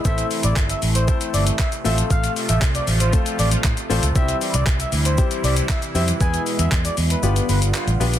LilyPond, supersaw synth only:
\new Staff \with { instrumentName = "Supersaw synth" } { \clef bass \time 4/4 \key c \major \tempo 4 = 117 << { <e e'>2.~ <e e'>8 <f f'>8~ | <f f'>1 | <e e'>1~ | <e e'>2 <d g f'>2 | } \\ { r2. r8 a8~ | a1 | g1 | r2 b2 | } >> }